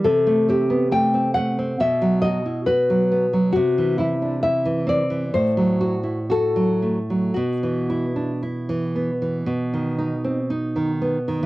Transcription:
<<
  \new Staff \with { instrumentName = "Nylon-string guitar" } { \time 4/4 \key b \phrygian \tempo 4 = 66 a'8 g'8 g''8 fis''8 e''8 dis''8 b'4 | fis'8 e'8 e''8 d''8 c''4 a'4 | fis'2. r4 | }
  \new Staff \with { instrumentName = "Nylon-string guitar" } { \time 4/4 \key b \phrygian c16 a16 c'16 b16 a16 c'16 a16 c'16 b,16 fis16 fis'16 e'16 fis'16 fis16 b16 fis16 | c16 e16 e'16 d'16 e'16 e16 c'16 e16 a,16 fis16 fis'16 e'16 fis'16 fis16 a16 fis16 | b,16 e16 e'16 d'16 e'16 e16 b16 e16 b,16 dis16 dis'16 c'16 dis'16 dis16 b16 dis16 | }
>>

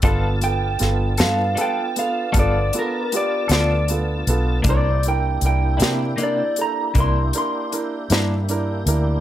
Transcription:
<<
  \new Staff \with { instrumentName = "Clean electric guitar" } { \time 12/8 \key g \mixolydian \tempo 4. = 52 r8 g''4 f''8 g''8 f''8 d''8 bes'8 d''8 d''8 r4 | d''8 g''8 g''4 d''8 bes''8 c'''8 c'''8 r2 | }
  \new Staff \with { instrumentName = "Grand piano" } { \time 12/8 \key g \mixolydian <b f' a'>8 <b f' a'>8 <b f' a'>8 <b f' a'>8 <b f' a'>8 <b f' a'>8 <b f' a'>8 <b f' a'>8 <b f' g'>8 <b f' a'>8 <b f' a'>8 <b f' a'>8 | <d' e' bes'>8 <d' e' bes'>8 <d' e' bes'>8 <d' e' bes'>8 <d' e' bes'>8 <d' e' a'>8 <d' e' bes'>8 <d' e' bes'>8 <d' e' bes'>8 <d' e' bes'>8 <d' e' bes'>8 <d' e' bes'>8 | }
  \new Staff \with { instrumentName = "Tonewheel organ" } { \time 12/8 \key g \mixolydian <b d' f' a''>1. | <bes d' e' g'>1. | }
  \new Staff \with { instrumentName = "Clean electric guitar" } { \time 12/8 \key g \mixolydian <g b f' a'>8 r4 <b f' a'>8 <g b f' a'>8 r8 <g b f' a'>8 r4 <b f' a'>8 r4 | <c bes d' e'>8 r4 <bes d' e'>8 <c bes d' e'>8 r8 <c bes d' e'>8 r4 <bes d' e'>8 r4 | }
  \new Staff \with { instrumentName = "Fingered electric bass" } { \clef bass \time 12/8 \key g \mixolydian g,,4 g,,8 g,8 r4 g,,8 r4 d,4 b,,8 | c,4 c,8 c8 r4 c,8 r4 g,4 d,8 | }
  \new DrumStaff \with { instrumentName = "Drums" } \drummode { \time 12/8 <hh bd>8 hh8 <hh sn>8 <hh sn>8 hh8 hh8 <hh bd>8 hh8 hh8 <hh sn>8 hh8 hh8 | <hh bd>8 hh8 hh8 <hh sn>8 hh8 hh8 <hh bd>8 hh8 hh8 <hh sn>8 hh8 hh8 | }
>>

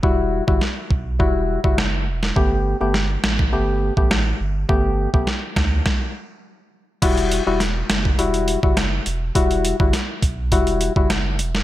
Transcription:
<<
  \new Staff \with { instrumentName = "Synth stab" } { \time 4/4 \key e \minor \tempo 4 = 103 <g e' fis'>8. <g e' fis'>16 r4 <g e' fis'>8. <g e' fis'>16 r4 | <a b g'>8. <a b g'>16 r4 <a b g'>8. <a b g'>16 r4 | <a b g'>8. <a b g'>16 r2. | <g e' fis'>8. <g e' fis'>16 r4 <g e' fis'>8. <g e' fis'>16 r4 |
<g e' fis'>8. <g e' fis'>16 r4 <g e' fis'>8. <g e' fis'>16 r4 | }
  \new Staff \with { instrumentName = "Sub bass" } { \clef bass \time 4/4 \key e \minor e,,8. g,,16 r8 b,,8 e,,8. fis,,8. e,,8 | g,,8. g,,8. a,,8 g,,8. a,,8. g,,8 | g,,8. b,,16 r8 d,8 r2 | e,,8. e,,8. fis,,8 e,,8. fis,,8. e,,8 |
e,,8. g,,16 r8 b,,8 e,,8. fis,,8. e,,8 | }
  \new DrumStaff \with { instrumentName = "Drums" } \drummode { \time 4/4 bd8. bd16 sn8 bd8 bd8. bd16 sn8. sn16 | bd4 sn8 sn16 bd16 r8. bd16 sn4 | bd8. bd16 sn8 <bd sn>8 <bd sn>4 r4 | <cymc hh bd>16 hh16 hh8 <hh sn>8 <hh sn>16 bd16 hh16 hh16 hh16 bd16 <hh sn>8 hh8 |
<hh bd>16 hh16 hh16 bd16 <hh sn>8 <hh bd>8 <hh bd>16 hh16 hh16 bd16 <hh sn>8 hh16 sn16 | }
>>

